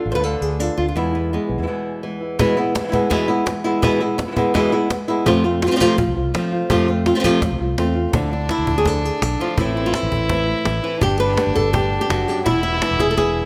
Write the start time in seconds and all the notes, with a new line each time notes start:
Already playing: D3 F4 A4
0.05 A1, muted nylon-string guitar stroke
0.10 D3 A3 D4 F4 C5
0.14 D2 D3 A3 D4 F4 B4
0.19 D3 A3 D4 F4
0.24 D3 A3 D4 F4 A4
0.41 D2 G#4
0.59 D3 A3 D4 F4 A4
0.77 D2 A3 D4 F4
0.88 F4
0.95 E2 B2 E3 G#3 B3 E4
1.13 G#3 B3 E4
1.30 G#3 B3 E4
1.49 B1, muted nylon-string guitar stroke
1.58 E2 E3 G#3 B3 E4
1.62 E3 G#3 B3 E4
1.67 B2 E3 G#3 B3 E4
2.03 E3 G#3 B3 E4
2.21 G#3 B3 E4
2.39 B2 E3 G#3 B3 E4, cajon bass
2.56 G#3 B3 E4, cajon slap
2.75 G#3 B3 E4, muted nylon-string guitar stroke, cajon slap
2.79 E3 G#3 B3 E4
2.83 E3 G#3 B3 E4
2.88 E3 G#3 B3 E4
2.92 B2 E3 G#3 B3 E4, cajon bass
3.10 B2 E3 G#3 B3 E4, muted nylon-string guitar stroke, cajon bass, cajon slap
3.28 G#3 B3 E4
3.46 E3 G#3 B3 E4, muted nylon-string guitar stroke, cajon slap
3.64 G#3 B3 E4
3.82 B2 E3 G#3 B3 E4, cajon bass
4.00 G#3 B3 E4
4.17 G#3 B3 E4, muted nylon-string guitar stroke, cajon slap
4.27 E3 G#3 B3 E4
4.31 E3 G#3 B3 E4
4.36 B2 E3 G#3 B3 E4, cajon bass
4.54 B2 E3 G#3 B3 E4, muted nylon-string guitar stroke, cajon bass, cajon slap
4.71 G#3 B3 E4
4.89 E3 G#3 B3 E4, muted nylon-string guitar stroke, cajon slap
5.08 G#3 B3 E4
5.25 F2 C3 F3 A3 C4 F4, cajon bass
5.43 A3 C4 F4, cajon slap
5.62 A3 C4 F4, muted nylon-string guitar stroke, cajon slap
5.67 F3 A3 C4 F4
5.71 F3 A3 C4 F4
5.76 F3 A3 C4 F4
5.80 C3 F3 A3 C4 F4, cajon bass
5.97 C3 F3 A3 C4 F4, muted nylon-string guitar stroke, cajon bass
6.07 D2
6.15 C2 A3 C4 F4
6.33 F3 A3 C4 F4, muted nylon-string guitar stroke, cajon slap
6.52 A3 C4 F4, cajon slap
6.69 F2 C3 F3 A3 C4 F4, cajon bass
6.88 A3 C4 F4
7.06 A3 C4 F4, muted nylon-string guitar stroke, cajon slap
7.15 F3 A3 C4 F4
7.20 F3 A3 C4 F4
7.24 C3 F3 A3 C4 F4, cajon bass
7.41 C3 F3 A3 C4 F4, muted nylon-string guitar stroke, cajon bass, cajon slap
7.51 D2
7.60 C2 A3 C4 F4
7.78 E2 A3 C4 F4, muted nylon-string guitar stroke, cajon slap
7.95 A3 C4 F4
8.13 D2 D3 F3 A3 D4 E4, cajon bass
8.31 A3 D4 E4, cajon slap
8.49 E4, muted nylon-string guitar stroke, cajon slap
8.59 D2
8.67 D2 A3 D4 E4, cajon bass
8.78 G#4
8.85 D3 F3 A3 D4 E4 A4, cajon bass, cajon slap
9.03 A3 D4 E4 G#4
9.21 B1 A4, muted nylon-string guitar stroke, cajon slap
9.39 F3 A3 D4 E4 F4, cajon slap
9.57 A1 A2 E3 A3 C4 E4, cajon bass
9.75 A3 C4 E4
9.86 F4
9.94 E4, muted nylon-string guitar stroke, cajon slap
10.03 A1
10.11 A1 A3 C4 E4, cajon bass
10.29 E3 A3 C4 E4, cajon bass, cajon slap
10.47 A3 C4 E4
10.65 A1, muted nylon-string guitar stroke, cajon slap
10.83 E3 A3 C4 E4
11.01 G1 G2 D4 G4, muted nylon-string guitar stroke, cajon bass
11.20 D3 B4, cajon slap
11.24 A3 B3 G4
11.28 D3 A3 B3 G4
11.33 D3 A3 B3 G4
11.37 B2 D3 A3 B3 G4, cajon slap
11.47 G1
11.55 G1 A3 B3 G4 A4, cajon bass
11.73 B2 D3 A3 B3 G4, cajon bass
12.01 G4
12.09 F#1 G2 A3 B3 F#4 G4, cajon slap
12.27 F#2 G4, muted nylon-string guitar stroke, cajon slap
12.46 E1 E2 E4, muted nylon-string guitar stroke, cajon bass
12.63 E4
12.68 D3 G#3 B3 E4
12.72 D3 G#3 B3 E4
12.76 D3 G#3 B3 E4
12.81 B2 D3 G#3 B3 E4, cajon slap
12.91 E1
12.99 E1 G#3 B3 E4 G#4, cajon bass
13.11 A4
13.17 B2 D3 G#3 B3 E4 G#4, cajon bass, cajon slap